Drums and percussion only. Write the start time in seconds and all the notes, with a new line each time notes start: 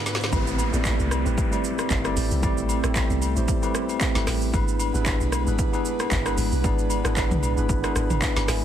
0.06 snare, shaker
0.15 snare
0.21 snare, shaker
0.32 kick, high agogo, shaker
0.47 shaker
0.58 high agogo, shaker
0.74 shaker
0.85 kick, clap, high agogo, shaker
1.00 shaker
1.11 cross-stick, high agogo, shaker
1.26 shaker
1.38 kick, shaker
1.52 high agogo, shaker
1.64 shaker
1.79 cross-stick, high agogo, shaker
1.90 kick, clap, low woodblock, shaker
2.04 cross-stick, high agogo, shaker
2.17 open hi-hat, shaker
2.31 shaker
2.43 kick, high agogo, shaker
2.58 shaker
2.69 high agogo, shaker
2.84 cross-stick, shaker
2.95 kick, clap, high agogo, shaker
3.10 shaker
3.22 high agogo, shaker
3.36 shaker
3.48 kick, shaker
3.63 high agogo, shaker
3.75 cross-stick, shaker
3.89 high agogo, shaker
4.01 kick, clap, low woodblock, shaker
4.15 snare, high agogo, shaker
4.27 cross-stick, snare, open hi-hat, shaker
4.42 shaker
4.54 kick, high agogo, shaker
4.68 shaker
4.80 high agogo, shaker
4.95 shaker
5.06 kick, clap, high agogo, shaker
5.21 shaker
5.32 cross-stick, high agogo, shaker
5.47 shaker
5.59 kick, shaker
5.73 high agogo, shaker
5.85 shaker
6.00 cross-stick, high agogo, shaker
6.11 kick, clap, low woodblock, shaker
6.26 cross-stick, high agogo, shaker
6.38 open hi-hat, shaker
6.52 shaker
6.64 kick, high agogo, shaker
6.79 shaker
6.90 high agogo, shaker
7.05 cross-stick, shaker
7.16 kick, clap, high agogo, shaker
7.31 mid tom, shaker
7.43 high agogo, shaker
7.57 shaker
7.69 kick, shaker
7.84 cross-stick, high agogo, shaker
7.96 cross-stick, shaker
8.10 mid tom, high agogo, shaker
8.22 kick, clap, low woodblock, shaker
8.36 snare, high agogo, shaker
8.48 cross-stick, snare, open hi-hat, shaker